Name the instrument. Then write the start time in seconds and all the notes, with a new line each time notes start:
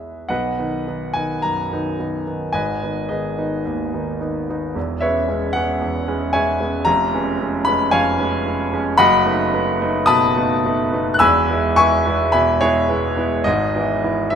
grand piano
Already playing: E2 E3 G#3 B3 G#4 B4 E5
0.29 B1 B2 B4 D#5 F#5
0.59 D#3 B3 D#4
0.88 D#3 B3 D#4
1.14 D#3 B3 D#4 G#5
1.42 F#2 A#5
1.73 D#3 B3 D#4
2.00 D#3 B3 D#4
2.27 D#3 B3 D#4
2.53 G#1 G#2 B4 D#5 G#5
2.83 D#3 B3 D#4
3.09 D#3 B3 D#4 G#4 B4 D#5
3.38 D#3 B3 D#4
3.65 D#2
3.93 D#3 B3 D#4
4.20 D#3 B3 D#4
4.49 D#3 B3 D#4
4.75 E1 E2
5.01 G#3 B3 C#4 B4 C#5 E5
5.28 G#3 B3 C#4
5.53 G#3 B3 C#4 F#5
5.81 E2
6.08 G#3 B3 C#4
6.33 G#3 B3 C#4 C#5 E5 G#5
6.60 G#3 B3 C#4
6.85 F1 F2 A#5
7.14 G#3 B3 C#4
7.40 G#3 B3 C#4
7.65 G#3 B3 C#4 B5
7.91 F2 C#5 F5 G#5
8.19 G#3 B3 C#4
8.46 G#3 B3 C#4
8.73 G#3 B3 C#4
8.98 F#1 F#2 D#5 F#5 B5
9.25 A3 B3 D#4
9.53 A3 B3 D#4
9.81 A3 B3 D#4
10.06 B2 A5 B5 D#6
10.37 A3 B3 D#4
10.65 A3 B3 D#4
10.93 A3 B3 D#4
11.14 F#6
11.19 E1 E2 G#5 B5 E6
11.50 G#3 B3 E4
11.76 G#3 B3 E4 E5 G#5 C#6
12.06 G#3 B3 E4
12.32 B2 E5 G#5 B5
12.61 G#3 B3 E4 G#4 C#5
12.89 G#3 B3 E4
13.17 G#3 B3 E4
13.44 G#1 G#2 D#5
13.76 E3 B3 E4
14.04 E3 B3 E4
14.30 E3 E5